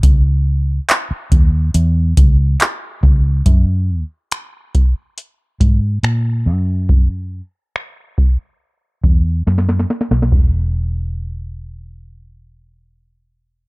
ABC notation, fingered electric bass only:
X:1
M:4/4
L:1/16
Q:1/4=70
K:F#dor
V:1 name="Fingered electric bass" clef=bass
C,,4 z2 D,,2 E,,2 C,,2 z2 C,,2 | F,,3 z6 z G,,2 ^A,,2 F,,2- | F,,3 z6 z E,,2 F,,2 z B,,, | E,,,16 |]